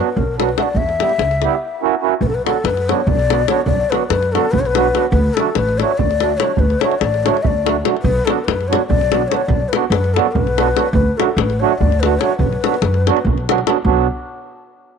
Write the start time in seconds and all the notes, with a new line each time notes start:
Already playing: B4
0.17 B1 A#4, davul low
0.38 F#3 B3 D4 F#4 B4, davul high
0.49 davul high
0.56 F#3 B3 D4 F#4 E5, davul high
0.63 D5
0.75 E2 E5, davul low
0.89 davul high
0.99 G3 B3 E4 G4, davul high
1.09 davul high
1.18 C#2, davul high
1.31 davul high
1.42 G3 B3 E4 G4, davul high
1.81 A#3 C#4 E4 F#4
2.01 A#3 C#4 E4 F#4
2.21 B1 B4, davul low
2.28 A4
2.34 B4
2.44 D3 F#3 B3 D4 F#4 A4, davul high
2.64 F#2 B4, davul high
2.77 davul high
2.88 D3 F#3 B3 D4 F#4 C#5, davul high
3.07 B1 D5, davul low
3.19 davul high
3.29 D3 F#3 B3 D4 F#4, davul high
3.48 D3 F#3 B3 D4 F#4 C#5, davul high
3.65 B1 D5, davul low
3.90 D3 F#3 B3 D4 F#4 B4, davul high
4.08 F#2 B4, davul high
4.23 davul high
4.32 D3 F#3 B3 D4 F#4 A4, davul high
4.51 B1 B4, davul low
4.59 C#5
4.65 B4, davul high
4.75 D3 F#3 B3 D4 F#4, davul high
4.94 D3 F#3 B3 D4 F#4, davul high
5.11 D2 B4, davul low
5.34 D3 F#3 A4, davul high
5.38 A3 D4 F#4
5.55 A1 B4, davul high
5.69 davul high
5.78 D3 F#3 A3 D4 F#4 C#5 D5, davul high
5.98 D2 D5, davul low
6.11 davul high
6.20 D3 F#3 A3 D4 F#4, davul high
6.37 D3 F#3 A3 D4 C#5, davul high
6.42 F#4
6.56 D2 B4 C#5, davul low
6.70 davul high
6.80 D3 F#3 A3 D4 F#4 C#5, davul high
6.92 davul high
6.99 A1 D5, davul high
7.14 davul high
7.23 D3 F#3 A3 D4 F#4 C#5 D5, davul high
7.37 davul high
7.42 D2 E5, davul low
7.47 D5
7.64 D3 F#3 A3 D4 F#4, davul high
7.83 D3 F#3 A3 D4 F#4, davul high
7.97 davul high
8.02 B1 B4, davul low
8.25 D3 F#3 B3 D4 F#4 A4, davul high
8.44 F#2 B4, davul high
8.61 davul high
8.68 D3 F#3 B3 D4 F#4 C#5
8.73 davul high
8.87 B1 D5, davul low
9.01 davul high
9.11 D3 F#3 B3 D4 F#4, davul high
9.28 D3 F#3 B3 D4 F#4 C#5, davul high
9.34 B4 C#5
9.47 B1 D5, davul low
9.68 B4
9.73 D3 F#3 B3 D4 F#4, davul high
9.88 F#2 B4, davul high
10.04 davul high
10.14 D3 F#3 B3 D4 F#4 A4, davul high
10.32 B1 B4, davul low
10.47 davul high
10.57 D3 F#3 B3 D4 F#4, davul high
10.76 D3 F#3 B3 D4 F#4, davul high
10.93 D2 B4, davul low
11.17 D3 F#3 A3 D4 F#4 A4, davul high
11.37 A1 B4, davul high
11.50 davul high
11.59 D3 F#3 A3 D4 F#4 C#5
11.78 D2 D5, davul low
11.92 davul high
12.00 D3 F#3 A3 B4, davul high
12.04 D4 F#4
12.19 D3 F#3 A3 D4 F#4 C#5, davul high
12.38 B1 B4, davul low
12.53 davul high
12.63 D3 F#3 B3 D4 F#4, davul high
12.74 davul high
12.82 F#2, davul high
12.94 davul high
13.07 D3 F#3 B3 D4 F#4, davul high
13.17 davul high
13.25 B1, davul low
13.38 davul high
13.49 D3 F#3 B3 D4 F#4, davul high
13.58 davul high
13.65 D3 F#3 B3 D4 F#4, davul high
13.85 B1 F#3 B3 D4 F#4, davul low